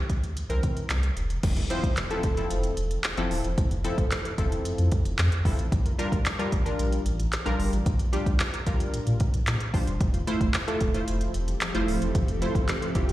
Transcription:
0.10 D2, kick, closed hi-hat
0.24 closed hi-hat
0.37 closed hi-hat
0.49 C2 E3 C4 A#4, closed hi-hat
0.63 C3, kick, closed hi-hat
0.77 closed hi-hat
0.90 C2, snare, clap, closed hi-hat
1.03 closed hi-hat
1.17 E1, closed hi-hat
1.30 closed hi-hat
1.43 F1, kick, closed hi-hat, crash, impact
1.56 E4 A4, closed hi-hat
1.70 F3 C4 E4 C5, closed hi-hat
1.83 F1, kick, closed hi-hat
1.97 snare, clap, closed hi-hat
2.10 F3 C4 E4 A4, closed hi-hat
2.23 E1, kick, closed hi-hat
2.37 F3 C4 E4 A4, closed hi-hat
2.51 F1, closed hi-hat
2.63 closed hi-hat
2.77 E1, closed hi-hat
2.91 closed hi-hat
3.04 snare, clap, closed hi-hat
3.17 F1 F3 C4 E4 A4, closed hi-hat
3.31 D1, open hi-hat
3.44 E1, closed hi-hat
3.58 F1, kick, closed hi-hat
3.71 closed hi-hat
3.84 F3 C4 E4 A4, closed hi-hat
3.98 G1, kick, closed hi-hat
4.11 snare, clap, closed hi-hat
4.25 E4 A4, closed hi-hat
4.38 F1 F3 C4 E4 A4, kick, closed hi-hat
4.52 closed hi-hat
4.65 F2, closed hi-hat
4.78 F2, closed hi-hat
4.92 kick, closed hi-hat
5.05 F1, closed hi-hat
5.18 F2, snare, clap, closed hi-hat
5.32 closed hi-hat
5.45 F1 F3 C4 E4 A4, kick, open hi-hat
5.59 A1, closed hi-hat
5.72 A#1, kick, closed hi-hat
5.85 F4 A#4, closed hi-hat
5.98 G3 D4 F4 A#4, closed hi-hat
6.12 A#1, kick, closed hi-hat
6.26 snare, clap, closed hi-hat
6.39 G3 D4 F4 A#4, closed hi-hat
6.52 A1, kick, closed hi-hat
6.65 G3 D4 F4 A#4, closed hi-hat
6.79 A#1, closed hi-hat
6.92 closed hi-hat
7.06 A1, closed hi-hat
7.20 closed hi-hat
7.33 snare, clap, closed hi-hat
7.45 A#1 G3 D4 F4 A#4, closed hi-hat
7.60 G1, open hi-hat
7.73 A1, closed hi-hat
7.86 A#1, kick, closed hi-hat
7.99 closed hi-hat
8.13 G3 D4 F4 G4, closed hi-hat
8.26 C2, kick, closed hi-hat
8.40 snare, clap, closed hi-hat
8.53 F4 A#4, closed hi-hat
8.66 A#1 G3 D4 F4 A#4, kick, closed hi-hat
8.80 closed hi-hat
8.94 A#2, closed hi-hat
9.07 A#2, closed hi-hat
9.20 kick, closed hi-hat
9.34 A#1, closed hi-hat
9.47 A#2, snare, clap, closed hi-hat
9.60 closed hi-hat
9.73 A#1 G3 D4 F4 C5, kick, open hi-hat
9.87 E1, closed hi-hat
10.00 F1 F3 C4 G4 A4 E5, kick, closed hi-hat
10.14 F4 C5, closed hi-hat
10.27 A3 E4 F4 C5, closed hi-hat
10.41 F1, kick, closed hi-hat
10.54 snare, clap, closed hi-hat
10.67 A3 E4 F4 A4, closed hi-hat
10.81 E1, kick, closed hi-hat
10.94 A3 E4 F4 C5, closed hi-hat
11.08 F1, closed hi-hat
11.21 closed hi-hat
11.34 E1, closed hi-hat
11.48 closed hi-hat
11.61 snare, clap, closed hi-hat
11.75 F1 A3 E4 F4 C5, closed hi-hat
11.88 D1, open hi-hat
12.02 E1, closed hi-hat
12.15 F1, kick, closed hi-hat
12.28 closed hi-hat
12.42 A3 E4 F4 C5, closed hi-hat
12.55 G1, kick, closed hi-hat
12.69 snare, clap, closed hi-hat
12.82 F4 C5, closed hi-hat
12.95 F1 A3 E4 F4 G4, kick, closed hi-hat
13.09 closed hi-hat

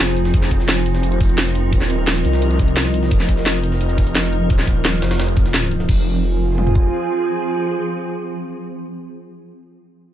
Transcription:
Already playing: F3 C4 D#4 F4 G#4 C5 G#5
0.00 F1
0.08 snare
0.17 closed hi-hat
0.25 snare
0.34 F1 A#4, kick, closed hi-hat
0.42 snare
0.51 kick, closed hi-hat
0.60 snare
0.68 snare, closed hi-hat
0.86 closed hi-hat
0.95 snare
1.03 closed hi-hat
1.12 closed hi-hat
1.17 D#5, kick, closed hi-hat, open hi-hat
1.29 closed hi-hat
1.38 snare, closed hi-hat
1.55 closed hi-hat
1.73 D#1, kick, closed hi-hat
1.81 snare
1.90 closed hi-hat
2.07 snare, closed hi-hat
2.16 closed hi-hat
2.25 C2, closed hi-hat
2.33 snare
2.42 closed hi-hat
2.51 closed hi-hat
2.59 kick, closed hi-hat
2.68 closed hi-hat
2.77 snare, closed hi-hat
2.85 snare
2.94 closed hi-hat
3.03 snare
3.11 F1, kick, closed hi-hat
3.20 snare
3.29 kick, closed hi-hat
3.37 snare
3.46 snare, closed hi-hat
3.63 closed hi-hat
3.72 snare
3.81 closed hi-hat
3.89 closed hi-hat
3.98 kick, closed hi-hat, open hi-hat
4.07 closed hi-hat
4.15 snare, closed hi-hat
4.33 closed hi-hat
4.50 D#1, kick, closed hi-hat
4.59 snare
4.67 kick, closed hi-hat
4.85 snare, closed hi-hat
4.94 closed hi-hat
5.02 F1, snare, closed hi-hat
5.11 snare, closed hi-hat
5.19 snare, closed hi-hat
5.28 closed hi-hat
5.37 kick, closed hi-hat
5.46 snare, closed hi-hat
5.54 snare, closed hi-hat
5.63 snare
5.71 closed hi-hat
5.80 snare
5.89 F1 F3 C4 F4 G#4, kick, crash
5.94 C5
5.99 G#5
6.58 mid tom
6.67 floor tom
6.75 kick

